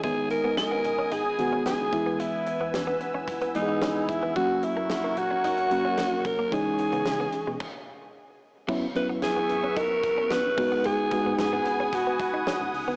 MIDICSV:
0, 0, Header, 1, 8, 480
1, 0, Start_track
1, 0, Tempo, 540541
1, 31, Time_signature, 4, 2, 24, 8
1, 11509, End_track
2, 0, Start_track
2, 0, Title_t, "Analog synth pad"
2, 0, Program_c, 0, 89
2, 0, Note_on_c, 0, 80, 72
2, 35, Note_on_c, 0, 75, 69
2, 35, Note_on_c, 0, 87, 85
2, 36, Note_on_c, 0, 59, 74
2, 1696, Note_off_c, 0, 75, 0
2, 1696, Note_off_c, 0, 87, 0
2, 1710, Note_on_c, 0, 71, 72
2, 1711, Note_on_c, 0, 88, 87
2, 3835, Note_off_c, 0, 80, 0
2, 3838, Note_off_c, 0, 59, 0
2, 3849, Note_off_c, 0, 71, 0
2, 3849, Note_off_c, 0, 88, 0
2, 3864, Note_on_c, 0, 70, 77
2, 3866, Note_on_c, 0, 78, 70
2, 3866, Note_on_c, 0, 85, 83
2, 3868, Note_on_c, 0, 73, 71
2, 5768, Note_off_c, 0, 70, 0
2, 5770, Note_off_c, 0, 78, 0
2, 5771, Note_off_c, 0, 73, 0
2, 5787, Note_on_c, 0, 68, 70
2, 5788, Note_on_c, 0, 75, 68
2, 5789, Note_on_c, 0, 73, 62
2, 6720, Note_off_c, 0, 85, 0
2, 6740, Note_off_c, 0, 68, 0
2, 6740, Note_off_c, 0, 73, 0
2, 6740, Note_off_c, 0, 75, 0
2, 7712, Note_on_c, 0, 78, 71
2, 7712, Note_on_c, 0, 85, 88
2, 7714, Note_on_c, 0, 59, 76
2, 7715, Note_on_c, 0, 76, 69
2, 9375, Note_off_c, 0, 85, 0
2, 9376, Note_off_c, 0, 59, 0
2, 9376, Note_off_c, 0, 76, 0
2, 9389, Note_on_c, 0, 71, 79
2, 9389, Note_on_c, 0, 80, 74
2, 9390, Note_on_c, 0, 87, 91
2, 11509, Note_off_c, 0, 71, 0
2, 11509, Note_off_c, 0, 78, 0
2, 11509, Note_off_c, 0, 80, 0
2, 11509, Note_off_c, 0, 87, 0
2, 11509, End_track
3, 0, Start_track
3, 0, Title_t, "Alto saxophone"
3, 0, Program_c, 1, 65
3, 33, Note_on_c, 1, 68, 98
3, 255, Note_off_c, 1, 68, 0
3, 275, Note_on_c, 1, 70, 94
3, 496, Note_off_c, 1, 70, 0
3, 510, Note_on_c, 1, 70, 96
3, 996, Note_on_c, 1, 68, 94
3, 1009, Note_off_c, 1, 70, 0
3, 1469, Note_off_c, 1, 68, 0
3, 1474, Note_on_c, 1, 68, 89
3, 1953, Note_on_c, 1, 64, 83
3, 1967, Note_off_c, 1, 68, 0
3, 2432, Note_off_c, 1, 64, 0
3, 3156, Note_on_c, 1, 63, 90
3, 3637, Note_on_c, 1, 64, 79
3, 3650, Note_off_c, 1, 63, 0
3, 3868, Note_off_c, 1, 64, 0
3, 3874, Note_on_c, 1, 66, 96
3, 4122, Note_on_c, 1, 64, 84
3, 4135, Note_off_c, 1, 66, 0
3, 4602, Note_on_c, 1, 66, 101
3, 4615, Note_off_c, 1, 64, 0
3, 5559, Note_on_c, 1, 70, 95
3, 5572, Note_off_c, 1, 66, 0
3, 5797, Note_on_c, 1, 68, 94
3, 5811, Note_off_c, 1, 70, 0
3, 6754, Note_off_c, 1, 68, 0
3, 7959, Note_on_c, 1, 71, 93
3, 8065, Note_off_c, 1, 71, 0
3, 8198, Note_on_c, 1, 68, 102
3, 8675, Note_on_c, 1, 70, 105
3, 8689, Note_off_c, 1, 68, 0
3, 9161, Note_on_c, 1, 71, 107
3, 9175, Note_off_c, 1, 70, 0
3, 9639, Note_on_c, 1, 68, 99
3, 9653, Note_off_c, 1, 71, 0
3, 10115, Note_off_c, 1, 68, 0
3, 10122, Note_on_c, 1, 68, 90
3, 10603, Note_on_c, 1, 66, 82
3, 10617, Note_off_c, 1, 68, 0
3, 11317, Note_off_c, 1, 66, 0
3, 11509, End_track
4, 0, Start_track
4, 0, Title_t, "Clean electric guitar"
4, 0, Program_c, 2, 27
4, 33, Note_on_c, 2, 56, 78
4, 117, Note_off_c, 2, 56, 0
4, 394, Note_on_c, 2, 59, 72
4, 478, Note_off_c, 2, 59, 0
4, 633, Note_on_c, 2, 59, 65
4, 717, Note_off_c, 2, 59, 0
4, 874, Note_on_c, 2, 61, 70
4, 958, Note_off_c, 2, 61, 0
4, 993, Note_on_c, 2, 63, 82
4, 1077, Note_off_c, 2, 63, 0
4, 1355, Note_on_c, 2, 61, 66
4, 1439, Note_off_c, 2, 61, 0
4, 1475, Note_on_c, 2, 59, 76
4, 1559, Note_off_c, 2, 59, 0
4, 1831, Note_on_c, 2, 59, 63
4, 1916, Note_off_c, 2, 59, 0
4, 1952, Note_on_c, 2, 56, 81
4, 2037, Note_off_c, 2, 56, 0
4, 2315, Note_on_c, 2, 59, 68
4, 2398, Note_off_c, 2, 59, 0
4, 2550, Note_on_c, 2, 59, 74
4, 2635, Note_off_c, 2, 59, 0
4, 2793, Note_on_c, 2, 61, 74
4, 2877, Note_off_c, 2, 61, 0
4, 3035, Note_on_c, 2, 59, 79
4, 3119, Note_off_c, 2, 59, 0
4, 3274, Note_on_c, 2, 63, 68
4, 3358, Note_off_c, 2, 63, 0
4, 3394, Note_on_c, 2, 61, 77
4, 3478, Note_off_c, 2, 61, 0
4, 3754, Note_on_c, 2, 59, 72
4, 3838, Note_off_c, 2, 59, 0
4, 3875, Note_on_c, 2, 54, 81
4, 3959, Note_off_c, 2, 54, 0
4, 4233, Note_on_c, 2, 58, 73
4, 4318, Note_off_c, 2, 58, 0
4, 4476, Note_on_c, 2, 58, 67
4, 4560, Note_off_c, 2, 58, 0
4, 4714, Note_on_c, 2, 61, 69
4, 4798, Note_off_c, 2, 61, 0
4, 4836, Note_on_c, 2, 63, 78
4, 4920, Note_off_c, 2, 63, 0
4, 5194, Note_on_c, 2, 61, 66
4, 5278, Note_off_c, 2, 61, 0
4, 5313, Note_on_c, 2, 58, 80
4, 5397, Note_off_c, 2, 58, 0
4, 5673, Note_on_c, 2, 58, 61
4, 5757, Note_off_c, 2, 58, 0
4, 5793, Note_on_c, 2, 61, 77
4, 5878, Note_off_c, 2, 61, 0
4, 6152, Note_on_c, 2, 59, 69
4, 6237, Note_off_c, 2, 59, 0
4, 6393, Note_on_c, 2, 59, 68
4, 6477, Note_off_c, 2, 59, 0
4, 6636, Note_on_c, 2, 56, 75
4, 6720, Note_off_c, 2, 56, 0
4, 7712, Note_on_c, 2, 54, 79
4, 7797, Note_off_c, 2, 54, 0
4, 8075, Note_on_c, 2, 59, 73
4, 8159, Note_off_c, 2, 59, 0
4, 8316, Note_on_c, 2, 59, 67
4, 8399, Note_off_c, 2, 59, 0
4, 8556, Note_on_c, 2, 61, 73
4, 8640, Note_off_c, 2, 61, 0
4, 8673, Note_on_c, 2, 63, 87
4, 8757, Note_off_c, 2, 63, 0
4, 9037, Note_on_c, 2, 61, 70
4, 9120, Note_off_c, 2, 61, 0
4, 9159, Note_on_c, 2, 59, 85
4, 9241, Note_off_c, 2, 59, 0
4, 9517, Note_on_c, 2, 59, 62
4, 9600, Note_off_c, 2, 59, 0
4, 9639, Note_on_c, 2, 56, 89
4, 9721, Note_off_c, 2, 56, 0
4, 10000, Note_on_c, 2, 59, 69
4, 10082, Note_off_c, 2, 59, 0
4, 10237, Note_on_c, 2, 59, 77
4, 10320, Note_off_c, 2, 59, 0
4, 10478, Note_on_c, 2, 61, 78
4, 10561, Note_off_c, 2, 61, 0
4, 10717, Note_on_c, 2, 59, 77
4, 10800, Note_off_c, 2, 59, 0
4, 10956, Note_on_c, 2, 63, 74
4, 11039, Note_off_c, 2, 63, 0
4, 11076, Note_on_c, 2, 61, 79
4, 11159, Note_off_c, 2, 61, 0
4, 11435, Note_on_c, 2, 59, 75
4, 11509, Note_off_c, 2, 59, 0
4, 11509, End_track
5, 0, Start_track
5, 0, Title_t, "FM electric piano"
5, 0, Program_c, 3, 5
5, 0, Control_c, 3, 64, 127
5, 25, Note_on_c, 3, 51, 73
5, 30, Note_on_c, 3, 56, 64
5, 33, Note_on_c, 3, 59, 68
5, 35, Note_on_c, 3, 63, 77
5, 44, Control_c, 3, 64, 0
5, 200, Control_c, 3, 64, 127
5, 643, Note_off_c, 3, 51, 0
5, 646, Note_off_c, 3, 56, 0
5, 647, Note_off_c, 3, 59, 0
5, 648, Note_off_c, 3, 63, 0
5, 1227, Note_on_c, 3, 51, 70
5, 1231, Note_on_c, 3, 56, 61
5, 1234, Note_on_c, 3, 59, 64
5, 1236, Note_on_c, 3, 66, 75
5, 1690, Note_off_c, 3, 51, 0
5, 1692, Note_off_c, 3, 56, 0
5, 1694, Note_off_c, 3, 59, 0
5, 1695, Note_off_c, 3, 66, 0
5, 1704, Note_on_c, 3, 52, 74
5, 1708, Note_on_c, 3, 56, 63
5, 1712, Note_on_c, 3, 59, 62
5, 1715, Note_on_c, 3, 64, 81
5, 1724, Control_c, 3, 64, 0
5, 1868, Control_c, 3, 64, 127
5, 2476, Note_off_c, 3, 52, 0
5, 2478, Note_off_c, 3, 56, 0
5, 2480, Note_off_c, 3, 59, 0
5, 2481, Note_off_c, 3, 64, 0
5, 3150, Note_on_c, 3, 52, 68
5, 3154, Note_on_c, 3, 56, 62
5, 3156, Note_on_c, 3, 59, 62
5, 3159, Note_on_c, 3, 63, 61
5, 3213, Note_off_c, 3, 63, 0
5, 3216, Note_on_c, 3, 68, 75
5, 3612, Note_off_c, 3, 52, 0
5, 3614, Note_off_c, 3, 56, 0
5, 3615, Note_off_c, 3, 59, 0
5, 3645, Note_off_c, 3, 68, 0
5, 3867, Note_on_c, 3, 54, 73
5, 3872, Note_on_c, 3, 58, 69
5, 3875, Note_on_c, 3, 61, 69
5, 3879, Note_on_c, 3, 66, 83
5, 3882, Control_c, 3, 64, 0
5, 4026, Control_c, 3, 64, 127
5, 4484, Note_off_c, 3, 54, 0
5, 4487, Note_off_c, 3, 58, 0
5, 4488, Note_off_c, 3, 61, 0
5, 4490, Note_off_c, 3, 66, 0
5, 5067, Note_on_c, 3, 54, 69
5, 5069, Note_on_c, 3, 58, 61
5, 5072, Note_on_c, 3, 61, 64
5, 5076, Note_on_c, 3, 66, 78
5, 5530, Note_off_c, 3, 54, 0
5, 5531, Note_off_c, 3, 58, 0
5, 5533, Note_off_c, 3, 61, 0
5, 5535, Note_off_c, 3, 66, 0
5, 5781, Note_on_c, 3, 52, 71
5, 5785, Note_on_c, 3, 56, 69
5, 5789, Note_on_c, 3, 61, 67
5, 5792, Note_on_c, 3, 63, 77
5, 5802, Control_c, 3, 64, 0
5, 5970, Control_c, 3, 64, 127
5, 6401, Note_off_c, 3, 52, 0
5, 6403, Note_off_c, 3, 56, 0
5, 6405, Note_off_c, 3, 61, 0
5, 6406, Note_off_c, 3, 63, 0
5, 6764, Control_c, 3, 64, 0
5, 7705, Note_on_c, 3, 54, 83
5, 7709, Note_on_c, 3, 59, 79
5, 7713, Note_on_c, 3, 61, 83
5, 7716, Note_on_c, 3, 64, 101
5, 7862, Note_off_c, 3, 54, 0
5, 7864, Note_off_c, 3, 59, 0
5, 7866, Note_off_c, 3, 61, 0
5, 7867, Note_off_c, 3, 64, 0
5, 7872, Control_c, 3, 64, 127
5, 7945, Note_on_c, 3, 54, 68
5, 7950, Note_on_c, 3, 59, 62
5, 7951, Note_on_c, 3, 61, 61
5, 7956, Note_on_c, 3, 64, 75
5, 8563, Note_off_c, 3, 54, 0
5, 8566, Note_off_c, 3, 59, 0
5, 8566, Note_off_c, 3, 61, 0
5, 8569, Note_off_c, 3, 64, 0
5, 9385, Note_on_c, 3, 56, 72
5, 9388, Note_on_c, 3, 59, 65
5, 9393, Note_on_c, 3, 63, 67
5, 9397, Note_on_c, 3, 66, 81
5, 9404, Control_c, 3, 64, 0
5, 9538, Control_c, 3, 64, 127
5, 9772, Note_off_c, 3, 56, 0
5, 9774, Note_off_c, 3, 59, 0
5, 9776, Note_off_c, 3, 63, 0
5, 9778, Note_off_c, 3, 66, 0
5, 9870, Note_on_c, 3, 56, 71
5, 9873, Note_on_c, 3, 59, 65
5, 9875, Note_on_c, 3, 63, 60
5, 9880, Note_on_c, 3, 66, 74
5, 10485, Note_off_c, 3, 56, 0
5, 10487, Note_off_c, 3, 59, 0
5, 10488, Note_off_c, 3, 63, 0
5, 10491, Note_off_c, 3, 66, 0
5, 11509, End_track
6, 0, Start_track
6, 0, Title_t, "FM bass"
6, 0, Program_c, 4, 39
6, 32, Note_on_c, 4, 32, 110
6, 212, Note_off_c, 4, 32, 0
6, 393, Note_on_c, 4, 32, 90
6, 482, Note_off_c, 4, 32, 0
6, 750, Note_on_c, 4, 35, 90
6, 930, Note_off_c, 4, 35, 0
6, 990, Note_on_c, 4, 32, 87
6, 1171, Note_off_c, 4, 32, 0
6, 1230, Note_on_c, 4, 30, 93
6, 1411, Note_off_c, 4, 30, 0
6, 1711, Note_on_c, 4, 28, 98
6, 1891, Note_off_c, 4, 28, 0
6, 1954, Note_on_c, 4, 28, 103
6, 2133, Note_off_c, 4, 28, 0
6, 2312, Note_on_c, 4, 40, 91
6, 2402, Note_off_c, 4, 40, 0
6, 2430, Note_on_c, 4, 40, 111
6, 2611, Note_off_c, 4, 40, 0
6, 2792, Note_on_c, 4, 28, 83
6, 2882, Note_off_c, 4, 28, 0
6, 2911, Note_on_c, 4, 30, 91
6, 3091, Note_off_c, 4, 30, 0
6, 3512, Note_on_c, 4, 28, 86
6, 3601, Note_off_c, 4, 28, 0
6, 3629, Note_on_c, 4, 28, 91
6, 3720, Note_off_c, 4, 28, 0
6, 3750, Note_on_c, 4, 29, 92
6, 3840, Note_off_c, 4, 29, 0
6, 3872, Note_on_c, 4, 30, 107
6, 4052, Note_off_c, 4, 30, 0
6, 4226, Note_on_c, 4, 30, 92
6, 4318, Note_off_c, 4, 30, 0
6, 4587, Note_on_c, 4, 34, 93
6, 4768, Note_off_c, 4, 34, 0
6, 4827, Note_on_c, 4, 32, 88
6, 5070, Note_on_c, 4, 30, 93
6, 5083, Note_off_c, 4, 32, 0
6, 5250, Note_off_c, 4, 30, 0
6, 5548, Note_on_c, 4, 36, 86
6, 5730, Note_off_c, 4, 36, 0
6, 5791, Note_on_c, 4, 37, 111
6, 5971, Note_off_c, 4, 37, 0
6, 6149, Note_on_c, 4, 49, 93
6, 6240, Note_off_c, 4, 49, 0
6, 6272, Note_on_c, 4, 49, 92
6, 6452, Note_off_c, 4, 49, 0
6, 6634, Note_on_c, 4, 47, 91
6, 6723, Note_off_c, 4, 47, 0
6, 7712, Note_on_c, 4, 30, 108
6, 7892, Note_off_c, 4, 30, 0
6, 8074, Note_on_c, 4, 30, 93
6, 8163, Note_off_c, 4, 30, 0
6, 8433, Note_on_c, 4, 32, 86
6, 8613, Note_off_c, 4, 32, 0
6, 8672, Note_on_c, 4, 30, 92
6, 8852, Note_off_c, 4, 30, 0
6, 8908, Note_on_c, 4, 28, 92
6, 9089, Note_off_c, 4, 28, 0
6, 9391, Note_on_c, 4, 32, 96
6, 9571, Note_off_c, 4, 32, 0
6, 9635, Note_on_c, 4, 32, 109
6, 9813, Note_off_c, 4, 32, 0
6, 9989, Note_on_c, 4, 44, 95
6, 10080, Note_off_c, 4, 44, 0
6, 10113, Note_on_c, 4, 44, 102
6, 10292, Note_off_c, 4, 44, 0
6, 10470, Note_on_c, 4, 32, 93
6, 10561, Note_off_c, 4, 32, 0
6, 10592, Note_on_c, 4, 35, 87
6, 10772, Note_off_c, 4, 35, 0
6, 11194, Note_on_c, 4, 32, 99
6, 11283, Note_off_c, 4, 32, 0
6, 11313, Note_on_c, 4, 37, 84
6, 11402, Note_off_c, 4, 37, 0
6, 11435, Note_on_c, 4, 38, 93
6, 11509, Note_off_c, 4, 38, 0
6, 11509, End_track
7, 0, Start_track
7, 0, Title_t, "Muted clean electric guitar strokes"
7, 273, Note_on_c, 9, 29, 41
7, 362, Note_off_c, 9, 29, 0
7, 756, Note_on_c, 9, 29, 41
7, 845, Note_off_c, 9, 29, 0
7, 1116, Note_on_c, 9, 29, 40
7, 1205, Note_off_c, 9, 29, 0
7, 1712, Note_on_c, 9, 29, 43
7, 1800, Note_off_c, 9, 29, 0
7, 2194, Note_on_c, 9, 29, 46
7, 2283, Note_off_c, 9, 29, 0
7, 2671, Note_on_c, 9, 29, 42
7, 2760, Note_off_c, 9, 29, 0
7, 3155, Note_on_c, 9, 29, 43
7, 3244, Note_off_c, 9, 29, 0
7, 3517, Note_on_c, 9, 29, 41
7, 3606, Note_off_c, 9, 29, 0
7, 4112, Note_on_c, 9, 29, 43
7, 4201, Note_off_c, 9, 29, 0
7, 4595, Note_on_c, 9, 29, 43
7, 4684, Note_off_c, 9, 29, 0
7, 4953, Note_on_c, 9, 29, 44
7, 5042, Note_off_c, 9, 29, 0
7, 5554, Note_on_c, 9, 29, 39
7, 5643, Note_off_c, 9, 29, 0
7, 6033, Note_on_c, 9, 29, 43
7, 6122, Note_off_c, 9, 29, 0
7, 6516, Note_on_c, 9, 29, 41
7, 6604, Note_off_c, 9, 29, 0
7, 7953, Note_on_c, 9, 29, 44
7, 8042, Note_off_c, 9, 29, 0
7, 8436, Note_on_c, 9, 29, 45
7, 8525, Note_off_c, 9, 29, 0
7, 8799, Note_on_c, 9, 29, 40
7, 8888, Note_off_c, 9, 29, 0
7, 9400, Note_on_c, 9, 29, 44
7, 9489, Note_off_c, 9, 29, 0
7, 9879, Note_on_c, 9, 29, 47
7, 9968, Note_off_c, 9, 29, 0
7, 10358, Note_on_c, 9, 29, 44
7, 10447, Note_off_c, 9, 29, 0
7, 10836, Note_on_c, 9, 29, 43
7, 10925, Note_off_c, 9, 29, 0
7, 11195, Note_on_c, 9, 29, 44
7, 11284, Note_off_c, 9, 29, 0
7, 11509, End_track
8, 0, Start_track
8, 0, Title_t, "Drums"
8, 30, Note_on_c, 9, 42, 82
8, 31, Note_on_c, 9, 36, 94
8, 118, Note_off_c, 9, 42, 0
8, 120, Note_off_c, 9, 36, 0
8, 269, Note_on_c, 9, 42, 60
8, 358, Note_off_c, 9, 42, 0
8, 509, Note_on_c, 9, 38, 105
8, 510, Note_on_c, 9, 42, 74
8, 597, Note_off_c, 9, 38, 0
8, 599, Note_off_c, 9, 42, 0
8, 750, Note_on_c, 9, 42, 71
8, 839, Note_off_c, 9, 42, 0
8, 990, Note_on_c, 9, 42, 86
8, 1079, Note_off_c, 9, 42, 0
8, 1231, Note_on_c, 9, 42, 64
8, 1320, Note_off_c, 9, 42, 0
8, 1472, Note_on_c, 9, 42, 86
8, 1473, Note_on_c, 9, 38, 103
8, 1561, Note_off_c, 9, 42, 0
8, 1562, Note_off_c, 9, 38, 0
8, 1711, Note_on_c, 9, 36, 96
8, 1713, Note_on_c, 9, 42, 70
8, 1800, Note_off_c, 9, 36, 0
8, 1802, Note_off_c, 9, 42, 0
8, 1952, Note_on_c, 9, 42, 81
8, 2041, Note_off_c, 9, 42, 0
8, 2189, Note_on_c, 9, 42, 63
8, 2278, Note_off_c, 9, 42, 0
8, 2433, Note_on_c, 9, 38, 106
8, 2434, Note_on_c, 9, 42, 72
8, 2522, Note_off_c, 9, 38, 0
8, 2523, Note_off_c, 9, 42, 0
8, 2671, Note_on_c, 9, 42, 67
8, 2760, Note_off_c, 9, 42, 0
8, 2911, Note_on_c, 9, 36, 82
8, 2914, Note_on_c, 9, 42, 86
8, 2999, Note_off_c, 9, 36, 0
8, 3002, Note_off_c, 9, 42, 0
8, 3033, Note_on_c, 9, 42, 52
8, 3122, Note_off_c, 9, 42, 0
8, 3153, Note_on_c, 9, 42, 67
8, 3241, Note_off_c, 9, 42, 0
8, 3389, Note_on_c, 9, 38, 108
8, 3389, Note_on_c, 9, 42, 84
8, 3477, Note_off_c, 9, 42, 0
8, 3478, Note_off_c, 9, 38, 0
8, 3630, Note_on_c, 9, 36, 92
8, 3632, Note_on_c, 9, 42, 73
8, 3719, Note_off_c, 9, 36, 0
8, 3721, Note_off_c, 9, 42, 0
8, 3871, Note_on_c, 9, 42, 77
8, 3872, Note_on_c, 9, 36, 101
8, 3959, Note_off_c, 9, 42, 0
8, 3961, Note_off_c, 9, 36, 0
8, 4110, Note_on_c, 9, 42, 65
8, 4199, Note_off_c, 9, 42, 0
8, 4348, Note_on_c, 9, 38, 107
8, 4350, Note_on_c, 9, 42, 73
8, 4437, Note_off_c, 9, 38, 0
8, 4438, Note_off_c, 9, 42, 0
8, 4590, Note_on_c, 9, 42, 69
8, 4679, Note_off_c, 9, 42, 0
8, 4833, Note_on_c, 9, 42, 87
8, 4922, Note_off_c, 9, 42, 0
8, 4950, Note_on_c, 9, 42, 49
8, 5039, Note_off_c, 9, 42, 0
8, 5071, Note_on_c, 9, 42, 69
8, 5160, Note_off_c, 9, 42, 0
8, 5307, Note_on_c, 9, 42, 86
8, 5308, Note_on_c, 9, 38, 110
8, 5396, Note_off_c, 9, 42, 0
8, 5397, Note_off_c, 9, 38, 0
8, 5549, Note_on_c, 9, 36, 91
8, 5550, Note_on_c, 9, 42, 68
8, 5638, Note_off_c, 9, 36, 0
8, 5639, Note_off_c, 9, 42, 0
8, 5791, Note_on_c, 9, 36, 98
8, 5791, Note_on_c, 9, 42, 81
8, 5880, Note_off_c, 9, 36, 0
8, 5880, Note_off_c, 9, 42, 0
8, 6025, Note_on_c, 9, 42, 61
8, 6114, Note_off_c, 9, 42, 0
8, 6149, Note_on_c, 9, 42, 49
8, 6237, Note_off_c, 9, 42, 0
8, 6265, Note_on_c, 9, 38, 110
8, 6266, Note_on_c, 9, 42, 72
8, 6354, Note_off_c, 9, 38, 0
8, 6355, Note_off_c, 9, 42, 0
8, 6504, Note_on_c, 9, 42, 75
8, 6592, Note_off_c, 9, 42, 0
8, 6748, Note_on_c, 9, 49, 81
8, 6750, Note_on_c, 9, 36, 100
8, 6837, Note_off_c, 9, 49, 0
8, 6839, Note_off_c, 9, 36, 0
8, 7712, Note_on_c, 9, 36, 103
8, 7712, Note_on_c, 9, 49, 90
8, 7801, Note_off_c, 9, 36, 0
8, 7801, Note_off_c, 9, 49, 0
8, 7951, Note_on_c, 9, 42, 59
8, 8040, Note_off_c, 9, 42, 0
8, 8189, Note_on_c, 9, 38, 110
8, 8190, Note_on_c, 9, 42, 76
8, 8278, Note_off_c, 9, 38, 0
8, 8279, Note_off_c, 9, 42, 0
8, 8430, Note_on_c, 9, 42, 70
8, 8519, Note_off_c, 9, 42, 0
8, 8671, Note_on_c, 9, 36, 84
8, 8671, Note_on_c, 9, 42, 87
8, 8759, Note_off_c, 9, 42, 0
8, 8760, Note_off_c, 9, 36, 0
8, 8910, Note_on_c, 9, 36, 86
8, 8910, Note_on_c, 9, 42, 71
8, 8999, Note_off_c, 9, 36, 0
8, 8999, Note_off_c, 9, 42, 0
8, 9150, Note_on_c, 9, 38, 104
8, 9150, Note_on_c, 9, 42, 85
8, 9238, Note_off_c, 9, 42, 0
8, 9239, Note_off_c, 9, 38, 0
8, 9392, Note_on_c, 9, 36, 106
8, 9392, Note_on_c, 9, 46, 73
8, 9480, Note_off_c, 9, 36, 0
8, 9481, Note_off_c, 9, 46, 0
8, 9629, Note_on_c, 9, 42, 85
8, 9717, Note_off_c, 9, 42, 0
8, 9867, Note_on_c, 9, 42, 65
8, 9869, Note_on_c, 9, 36, 92
8, 9956, Note_off_c, 9, 42, 0
8, 9958, Note_off_c, 9, 36, 0
8, 10110, Note_on_c, 9, 38, 115
8, 10112, Note_on_c, 9, 42, 73
8, 10199, Note_off_c, 9, 38, 0
8, 10200, Note_off_c, 9, 42, 0
8, 10350, Note_on_c, 9, 42, 72
8, 10438, Note_off_c, 9, 42, 0
8, 10591, Note_on_c, 9, 36, 85
8, 10593, Note_on_c, 9, 42, 90
8, 10680, Note_off_c, 9, 36, 0
8, 10681, Note_off_c, 9, 42, 0
8, 10830, Note_on_c, 9, 36, 92
8, 10832, Note_on_c, 9, 42, 67
8, 10918, Note_off_c, 9, 36, 0
8, 10921, Note_off_c, 9, 42, 0
8, 11073, Note_on_c, 9, 38, 108
8, 11073, Note_on_c, 9, 42, 85
8, 11161, Note_off_c, 9, 42, 0
8, 11162, Note_off_c, 9, 38, 0
8, 11316, Note_on_c, 9, 46, 75
8, 11404, Note_off_c, 9, 46, 0
8, 11509, End_track
0, 0, End_of_file